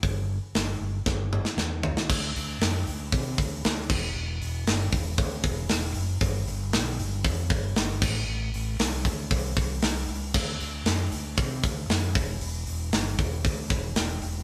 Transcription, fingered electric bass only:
\new Staff \with { instrumentName = "Fingered electric bass" } { \clef bass \time 4/4 \key d \dorian \tempo 4 = 116 g,,4 g,,8 g,,8 g,,4 e,4 | d,8 d,8 fis,8 d,8 c8 d,8 d,8 e,,8 | e,,8 e,,8 g,,8 e,,8 d,8 e,,8 e,,8 fis,,8 | g,,8 g,,8 b,,8 g,,8 f,8 g,,8 g,,8 a,,8 |
a,,8 a,,8 c,8 d,8 c,8 c,8 c,8 cis,8 | d,8 d,8 fis,8 d,8 c8 d,8 fis,8 e,,8 | e,,8 e,,8 g,,8 e,,8 d,8 e,,8 e,,8 e,,8 | }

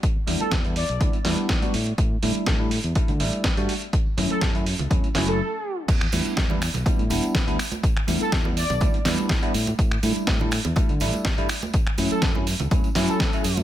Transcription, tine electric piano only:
\new Staff \with { instrumentName = "Tine electric piano" } { \time 4/4 \key e \dorian \tempo 4 = 123 r8 <g b d' e'>8. <g b d' e'>16 r8 <g b d' e'>16 r16 <g b d' e'>8. <g b d' fis'>16 r8 | r8 <g a d' e'>8. <g a d' e'>16 r8 <g a d' e'>16 r16 <g a d' e'>8. <g a d' fis'>16 r8 | r8 <fis a cis' e'>8. <fis a cis' e'>16 r8 <fis a cis' e'>16 r16 <fis a cis' e'>8 r4 | r8 <g b d' e'>8. <g b d' e'>16 r8 <g b d' e'>16 r16 <g b d' e'>8. <g b d' e'>16 r8 |
r8 <g b d' e'>8. <g b d' e'>16 r8 <g b d' e'>16 r16 <g b d' e'>8. <g b d' e'>16 r8 | r8 <g a d' e'>8. <g a d' e'>16 r8 <g a d' e'>16 r16 <g a d' e'>8. <g a d' e'>16 r8 | r8 <fis a cis' e'>8. <fis a cis' e'>16 r8 <fis a cis' e'>16 r16 <fis a cis' e'>8. <fis a cis' e'>16 r8 | }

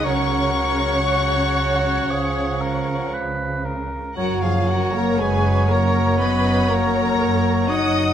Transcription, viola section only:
\new Staff \with { instrumentName = "Viola section" } { \time 4/4 \key fis \major \tempo 4 = 59 cis''2. r4 | fis'16 eis'16 fis'16 ais'16 gis'8 ais'8 b'8 ais'4 dis''8 | }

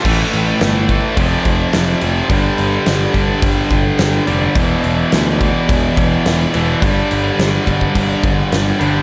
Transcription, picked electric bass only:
\new Staff \with { instrumentName = "Picked electric bass" } { \clef bass \time 4/4 \key g \mixolydian \tempo 4 = 106 a,,8 a,,8 g,,4 f,,8 f,,8 f,,8 f,,8 | g,,8 g,,8 g,,8 g,,8 g,,8 g,,8 g,,8 f,,8 | e,,8 e,,8 d,4 e,,8 e,,8 e,,8 e,,8 | g,,8 g,,8 g,,8 g,,8 g,,8 g,,8 g,,8 g,,8 | }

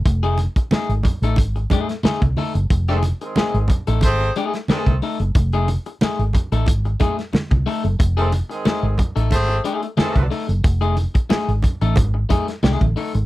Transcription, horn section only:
\new Staff \with { instrumentName = "Horn section" } { \time 4/4 \key c \dorian \tempo 4 = 91 r1 | r16 <ees a c' a'>16 r16 <ees gis c' gis'>8. r8 <a c' gis' c''>8 r8 <ees a c' a'>8 r8 | r1 | r16 <ees a c' a'>16 r16 <ees gis c' gis'>8. r8 <a c' gis' c''>8 r8 <ees a c' a'>8 r8 |
r1 | }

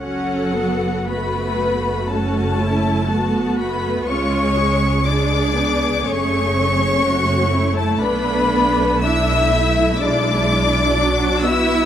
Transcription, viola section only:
\new Staff \with { instrumentName = "Viola section" } { \time 4/4 \key fis \minor \tempo 4 = 61 << { a'4 fis'4 fis'8 e'8 fis'4 | eis'8 gis'2~ gis'8 fis'8 e'8 | d'4 d'8 e'4. fis'4 | } \\ { cis'8 b8 a4 cis'4 b8 a8 | gis4 gis8 b8 a4 a4~ | a2 gis4 fis8 b8 | } >> }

